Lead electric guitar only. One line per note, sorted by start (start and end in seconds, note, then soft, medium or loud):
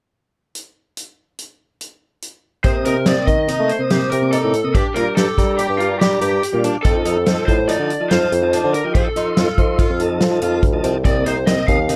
2.64 2.85 C5 medium
2.85 3.07 A#4 medium
3.06 3.26 D5 medium
3.27 3.71 D#5 medium
3.70 4.10 C5 medium
4.10 4.31 A#4 medium
4.32 4.75 A4 medium
4.74 4.96 G4 medium
4.94 5.15 A#4 medium
5.16 5.55 A4 medium
5.57 5.77 G4 medium
5.78 5.99 F4 medium
5.99 6.59 G4 medium
6.83 7.45 A4 medium
7.46 7.69 C5 medium
7.68 8.12 D5 medium
8.10 8.69 C5 medium
8.74 8.94 A#4 medium
8.95 10.59 A4 medium
11.05 11.27 D5 medium
11.26 11.46 C5 medium
11.46 11.66 D#5 medium
11.67 11.96 F5 medium